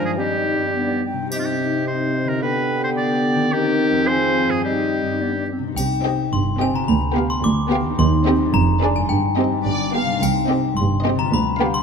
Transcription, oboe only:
0.05 G#4
0.19 G4
1.32 G4
1.39 F4
1.45 G4
1.87 C5
2.28 A#4
2.42 B4
2.84 C5
2.97 D5
3.53 G4
4.07 C5
4.50 G#4
4.64 G4

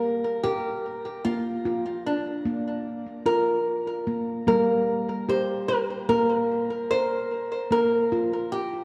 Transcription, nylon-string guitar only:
Already playing: A#4
0.44 G4
1.24 F4
2.06 D4
3.26 A#4
4.48 A#4
5.29 C5
5.68 A#4
6.09 A#4
6.91 C5
7.72 A#4
8.52 G4

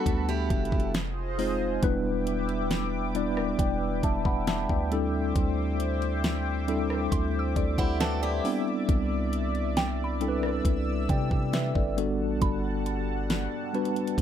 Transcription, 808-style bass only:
0.06 D2
0.51 F1
1.83 E1
3.59 E1
4.04 E1
4.70 D2
5.36 D2
7.12 D2
7.57 D2
8.89 C2
10.65 C2
11.10 C3
11.76 G1
12.20 A1
12.42 G1
14.18 D2

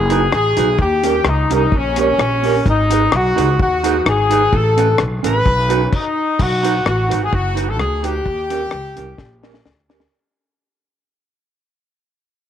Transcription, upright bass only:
Already playing: F#1
0.32 A1
0.57 B1
0.78 D#2
1.24 C#2
1.50 C2
1.72 A#1
2.18 A#1
2.66 G#1
3.12 B1
3.38 C#2
3.59 D#2
4.06 G#1
4.53 A1
5.00 B1
5.24 A1
5.45 B1
6.39 B1
6.86 A1
7.11 G#1
7.33 F#1
7.79 D2
8.26 D#2
8.72 C#2
8.98 C2
9.18 A#1
9.65 D2

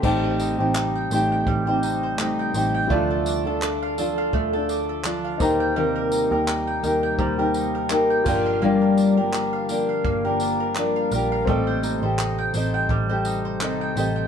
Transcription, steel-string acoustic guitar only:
0.02 A3 C4 D#4 G4
0.58 C4 D#4 G4
1.11 A3 C4 D#4 G4
1.66 C4 D#4 G4
2.18 A3 C4 D#4 G4
2.53 A3 C4 D#4 G4
2.89 D3 F3 D4 F4 A4
3.45 D4 F4 A4
3.98 F3 D4 F4 A4
4.53 D4 F4 A4
5.04 F3 D4 F4 A4
5.40 A#3 D#4 G4 A#4
5.76 C3 D#3 A#3 D#4 G4 A#4
6.30 A#3 D#4 G4 A#4
6.82 A#3 D#4 G4 A#4
7.38 A#3 D#4 G4 A#4
7.90 A#3 D#4 G4 A#4
8.25 F3 A#3 D4 G4
8.61 G2 F3 G3 A#3 D4 G4
9.17 F3 A#3 D4 G4
9.69 F3 A#3 D4 G4
10.24 F3 A#3 D4 G4
10.76 F3 A#3 D4 G4
11.12 F3 A#3 D4 G4
11.47 A3 C4 G4 A4 D#5
12.02 G4 A4 D#5
12.54 C4 G4 A4 D#5
13.09 G4 A4 D#5
13.60 C4 G4 A4 D#5
13.96 C4 G4 A4 D#5

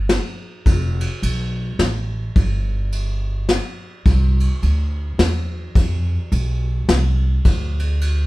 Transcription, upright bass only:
Already playing: G1
0.66 F1
1.23 B1
1.79 A1
2.36 G1
4.06 C2
4.62 D2
5.18 E2
5.76 F2
6.32 B1
6.89 C2
7.45 D2

